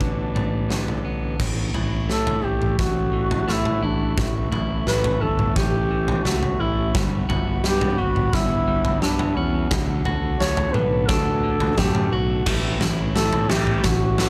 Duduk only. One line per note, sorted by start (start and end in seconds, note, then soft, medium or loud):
0.00 0.70 D4 medium
2.10 2.46 A4 medium
2.44 2.78 G4 medium
2.79 3.52 F#4 medium
3.50 3.86 E4 medium
3.84 4.18 D4 medium
4.88 5.23 B4 loud
5.21 5.55 A4 medium
5.56 6.27 G4 medium
6.26 6.62 F#4 medium
6.61 6.95 E4 medium
7.65 8.01 G4 loud
7.99 8.36 F#4 medium
8.34 9.04 E4 loud
9.02 9.39 D4 medium
9.37 9.71 C#4 medium
10.40 10.74 C#5 loud
10.73 11.09 B4 medium
11.08 11.80 A4 medium
11.78 12.15 G4 medium
12.14 12.47 F#4 medium
13.14 13.52 A4 loud
13.51 13.86 G4 medium
13.85 14.29 F#4 medium